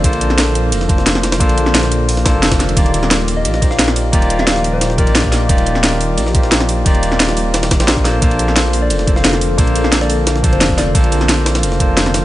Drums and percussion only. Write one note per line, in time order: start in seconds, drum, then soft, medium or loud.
0.04 kick loud
0.04 closed hi-hat medium
0.04 ride medium
0.13 ride soft
0.21 closed hi-hat medium
0.21 ride medium
0.30 snare soft
0.38 snare loud
0.38 closed hi-hat loud
0.38 ride medium
0.55 closed hi-hat medium
0.55 ride medium
0.72 closed hi-hat medium
0.72 ride medium
0.81 snare soft
0.89 kick loud
0.89 closed hi-hat medium
0.89 ride medium
0.98 snare soft
1.06 snare loud
1.06 closed hi-hat medium
1.06 ride medium
1.15 snare soft
1.15 snare medium
1.23 snare loud
1.23 closed hi-hat medium
1.23 ride medium
1.32 snare loud
1.32 ride medium
1.40 kick loud
1.40 closed hi-hat loud
1.40 ride medium
1.49 ride soft
1.58 closed hi-hat medium
1.58 ride medium
1.66 snare soft
1.75 snare loud
1.75 closed hi-hat loud
1.75 ride medium
1.83 snare medium
1.92 closed hi-hat medium
1.92 ride medium
2.09 closed hi-hat medium
2.09 open hi-hat medium
2.17 snare soft
2.26 kick loud
2.26 snare loud
2.26 closed hi-hat medium
2.26 ride medium
2.43 snare loud
2.43 closed hi-hat loud
2.43 ride medium
2.52 kick medium
2.52 snare loud
2.52 ride medium
2.60 snare soft
2.60 closed hi-hat medium
2.69 ride medium
2.77 kick loud
2.77 closed hi-hat medium
2.77 ride medium
2.86 ride soft
2.94 closed hi-hat medium
2.94 ride medium
3.03 snare soft
3.11 snare loud
3.11 closed hi-hat loud
3.11 ride medium
3.28 open hi-hat medium
3.28 ride medium
3.45 closed hi-hat loud
3.45 ride medium
3.54 snare soft
3.62 kick loud
3.62 closed hi-hat medium
3.62 ride medium
3.71 snare soft
3.79 snare loud
3.79 closed hi-hat loud
3.79 ride medium
3.88 snare soft
3.88 snare medium
3.96 open hi-hat medium
3.96 ride medium
4.13 kick loud
4.13 closed hi-hat medium
4.13 ride medium
4.22 ride soft
4.30 closed hi-hat medium
4.30 ride medium
4.39 snare soft
4.47 snare loud
4.47 closed hi-hat loud
4.47 ride medium
4.56 snare medium
4.64 open hi-hat medium
4.64 ride medium
4.81 snare loud
4.81 closed hi-hat medium
4.81 ride medium
4.90 snare soft
4.98 kick loud
4.98 closed hi-hat medium
4.98 ride medium
5.07 ride soft
5.15 snare loud
5.15 closed hi-hat medium
5.15 ride medium
5.24 kick medium
5.32 snare medium
5.32 snare soft
5.32 open hi-hat medium
5.32 ride medium
5.49 kick loud
5.49 closed hi-hat medium
5.49 ride medium
5.58 ride soft
5.66 closed hi-hat medium
5.66 ride medium
5.75 snare soft
5.84 snare loud
5.84 closed hi-hat loud
5.84 ride medium
6.01 open hi-hat medium
6.01 ride medium
6.18 closed hi-hat medium
6.18 ride medium
6.27 snare soft
6.35 kick loud
6.35 closed hi-hat medium
6.35 ride medium
6.43 snare soft
6.52 snare loud
6.52 closed hi-hat medium
6.52 ride medium
6.60 snare soft
6.60 snare medium
6.69 open hi-hat medium
6.69 ride medium
6.86 kick loud
6.86 closed hi-hat medium
6.86 ride medium
6.95 ride soft
7.03 closed hi-hat medium
7.03 ride medium
7.12 snare soft
7.20 snare loud
7.20 closed hi-hat medium
7.20 ride medium
7.29 snare medium
7.37 open hi-hat medium
7.37 ride medium
7.54 snare loud
7.54 closed hi-hat medium
7.54 ride medium
7.63 snare loud
7.63 ride medium
7.71 kick loud
7.71 snare loud
7.71 closed hi-hat medium
7.71 ride medium
7.80 snare loud
7.80 ride medium
7.88 snare loud
7.88 closed hi-hat medium
7.88 ride medium
7.97 kick medium
8.05 snare soft
8.05 snare medium
8.05 snare soft
8.05 open hi-hat medium
8.05 ride medium
8.22 kick loud
8.22 closed hi-hat medium
8.22 ride medium
8.31 ride soft
8.39 closed hi-hat medium
8.39 ride medium
8.48 snare soft
8.56 snare loud
8.56 closed hi-hat medium
8.56 ride medium
8.73 open hi-hat medium
8.73 ride medium
8.90 closed hi-hat medium
8.90 ride medium
8.99 snare soft
9.07 kick loud
9.07 closed hi-hat medium
9.07 ride medium
9.16 snare soft
9.24 snare loud
9.24 closed hi-hat medium
9.24 ride medium
9.33 snare soft
9.33 snare medium
9.41 open hi-hat medium
9.41 ride medium
9.58 kick loud
9.58 closed hi-hat medium
9.58 ride medium
9.67 ride soft
9.76 closed hi-hat medium
9.76 ride medium
9.84 snare soft
9.92 snare loud
9.92 closed hi-hat loud
9.92 ride medium
10.01 snare medium
10.10 open hi-hat medium
10.10 ride medium
10.27 snare loud
10.27 closed hi-hat medium
10.27 ride medium
10.36 snare soft
10.44 kick loud
10.44 closed hi-hat medium
10.44 ride medium
10.53 ride soft
10.61 snare loud
10.61 closed hi-hat medium
10.61 ride medium
10.70 kick medium
10.78 snare medium
10.78 snare soft
10.78 open hi-hat medium
10.78 ride medium
10.95 kick loud
10.95 closed hi-hat loud
10.95 ride medium
11.04 ride soft
11.12 closed hi-hat medium
11.12 ride medium
11.21 snare soft
11.29 snare loud
11.29 closed hi-hat loud
11.29 ride medium
11.46 snare loud
11.46 open hi-hat medium
11.46 ride medium
11.55 snare loud
11.55 ride medium
11.63 closed hi-hat medium
11.63 ride medium
11.72 snare soft
11.80 kick loud
11.80 closed hi-hat medium
11.80 ride medium
11.97 snare loud
11.97 closed hi-hat loud
11.97 ride medium
12.06 snare soft
12.06 snare medium
12.14 snare loud
12.14 open hi-hat medium
12.14 ride medium